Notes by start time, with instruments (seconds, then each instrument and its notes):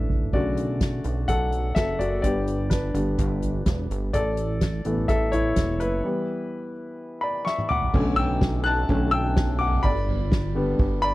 Already playing: analog synth bass A1, grand piano E3 A3 D4 A4 E5
0.09 floor tom
0.21 floor tom
0.33 analog synth bass B1, grand piano C#3 D3 A3 F#4 D5, kick, crash
0.57 closed hi-hat
0.81 kick, snare, closed hi-hat
1.04 analog synth bass B1, closed hi-hat
1.28 analog synth bass B1, grand piano A4 F#5, kick, closed hi-hat
1.52 closed hi-hat
1.75 analog synth bass F#1, grand piano A4 E5, kick, snare, closed hi-hat
1.99 analog synth bass F#1, grand piano F#4 D5, closed hi-hat
2.22 analog synth bass G1, grand piano D3 G3 B3 G4 D5, kick, closed hi-hat
2.48 closed hi-hat
2.70 grand piano D4 B4, kick, snare, closed hi-hat
2.94 analog synth bass G1, grand piano D3 G3 B3, closed hi-hat
3.18 analog synth bass G1, kick, closed hi-hat
3.42 closed hi-hat, floor tom
3.66 analog synth bass E1, kick, snare, closed hi-hat
3.90 analog synth bass G1, closed hi-hat
4.13 analog synth bass A1, grand piano A4 D5, kick, closed hi-hat
4.37 closed hi-hat
4.61 kick, snare, closed hi-hat
4.85 analog synth bass A1, grand piano E3 A3 B3, closed hi-hat
4.97 floor tom
5.08 analog synth bass A1, grand piano A4 E5, kick, closed hi-hat
5.32 grand piano E4 C#5, closed hi-hat, floor tom
5.56 analog synth bass E1, kick, snare, closed hi-hat
5.80 analog synth bass F#1, grand piano E4 B4, closed hi-hat
6.04 grand piano E3 G3 B3
7.21 grand piano D5 B5
7.45 grand piano E5 C#6, snare
7.58 high tom
7.69 grand piano F#5 D6, mid tom
7.82 floor tom
7.93 analog synth bass B1, grand piano D3 A3 C#4, kick, crash
8.16 grand piano G5 E6, floor tom, ride
8.41 kick, snare, ride
8.64 grand piano A5 F#6, ride
8.89 analog synth bass B1, grand piano D3 A3 C#4, kick, ride
9.11 grand piano G5 E6, ride
9.36 kick, snare, ride
9.59 grand piano F#5 D6, floor tom, ride
9.73 floor tom
9.83 analog synth bass G1, grand piano D5 B5, kick, ride
10.08 floor tom, ride
10.32 kick, snare, ride
10.55 grand piano D3 G3 B3, ride
10.79 analog synth bass G1, kick, ride
11.02 grand piano D5 B5, ride